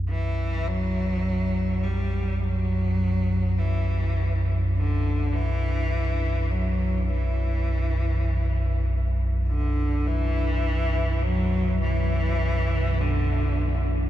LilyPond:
<<
  \new Staff \with { instrumentName = "Cello" } { \clef bass \time 4/4 \key b \minor \tempo 4 = 51 e8 fis4 g8 fis4 e8. r16 | d8 e4 fis8 e4. r8 | d8 e4 fis8 e4 d8. r16 | }
  \new Staff \with { instrumentName = "Synth drone" } { \clef bass \time 4/4 \key b \minor <b,, fis,>1~ | <b,, fis,>1~ | <b,, fis,>1 | }
>>